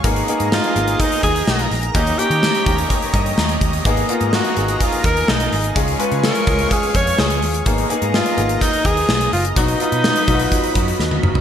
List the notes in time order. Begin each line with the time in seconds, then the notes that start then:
0.04 G#1 A#3 B3 D#4 G#4 A#4 D#5 A#5, kick, closed hi-hat
0.16 closed hi-hat
0.28 A#3 B3 D#4 G#4, closed hi-hat
0.40 G#2, closed hi-hat
0.52 F4, snare
0.64 closed hi-hat
0.75 G#1 A#3 B3 D#4 G#4, closed hi-hat
0.88 closed hi-hat
1.00 D#4, kick, closed hi-hat
1.12 closed hi-hat
1.23 D#2 G#4, kick, closed hi-hat
1.36 closed hi-hat
1.48 B1, snare
1.59 closed hi-hat
1.71 A#1, open hi-hat
1.83 closed hi-hat
1.95 D#2 A#3 C#4 D#4 G4 C#5 D#5, kick, closed hi-hat
2.07 closed hi-hat
2.18 A#3 C#4 D#4 G4, closed hi-hat
2.30 D#3, closed hi-hat
2.43 snare
2.55 closed hi-hat
2.66 D#2 A#3 C#4 D#4 G4, kick, closed hi-hat
2.78 closed hi-hat
2.90 kick, closed hi-hat
3.02 closed hi-hat
3.14 G2 D#5, kick, closed hi-hat
3.26 closed hi-hat
3.38 D#2 A#5, snare
3.49 closed hi-hat
3.61 D#2, kick, closed hi-hat
3.73 closed hi-hat
3.85 G#1 A#3 B3 D#4 G#4 A#4 A#5, kick, closed hi-hat
3.97 closed hi-hat
4.09 A#3 B3 D#4 F4, closed hi-hat
4.21 G#2, closed hi-hat
4.33 F#4, snare
4.45 closed hi-hat
4.56 G#1 A#3 B3 D#4 G#4, closed hi-hat
4.68 closed hi-hat
4.81 F4, kick, closed hi-hat
4.92 closed hi-hat
5.04 D#2 A#4, kick, closed hi-hat
5.17 closed hi-hat
5.28 B1 D#4, snare
5.40 closed hi-hat
5.52 G#1, open hi-hat
5.64 closed hi-hat
5.75 C#2 G#3 C#4 F4 G#4 C#5 F5 C#6, kick, closed hi-hat
5.88 closed hi-hat
5.99 G#3 C#4 F4 B4, closed hi-hat
6.12 C#3, closed hi-hat
6.24 A#4, snare
6.35 closed hi-hat
6.47 C#2 G#3 C#4 F4 G#4, kick, closed hi-hat
6.59 closed hi-hat
6.71 G#4, kick, closed hi-hat
6.83 closed hi-hat
6.95 F2 C#5, kick, closed hi-hat
7.07 closed hi-hat
7.18 C#2 G#4, snare
7.30 closed hi-hat
7.42 D#2, open hi-hat
7.54 closed hi-hat
7.66 G#1 A#3 B3 D#4 G#4 D#5 A#5, kick, closed hi-hat
7.78 closed hi-hat
7.89 A#3 B3 D#4 G#4, closed hi-hat
8.02 G#2, closed hi-hat
8.14 F4, snare
8.26 closed hi-hat
8.37 G#1 A#3 B3 D#4 G#4, closed hi-hat
8.49 closed hi-hat
8.61 D#4, kick, closed hi-hat
8.73 closed hi-hat
8.85 D#2 G#4, kick, closed hi-hat
8.97 closed hi-hat
9.09 B1, snare
9.21 closed hi-hat
9.33 F#1 F4, open hi-hat
9.45 closed hi-hat
9.56 B1 F#3 B3 D#4 F#4 B5, kick, closed hi-hat
9.68 closed hi-hat
9.80 F#3 B3 D#4 F4, closed hi-hat
9.92 B2, closed hi-hat
10.04 snare
10.16 closed hi-hat
10.27 B1 F#3 B3 D#4 F4, kick, closed hi-hat
10.34 F#4
10.40 closed hi-hat
10.52 kick, closed hi-hat
10.64 closed hi-hat
10.75 F#2, kick, closed hi-hat
10.88 closed hi-hat
10.99 D#2, snare
11.11 high tom
11.23 F#1, mid tom
11.35 floor tom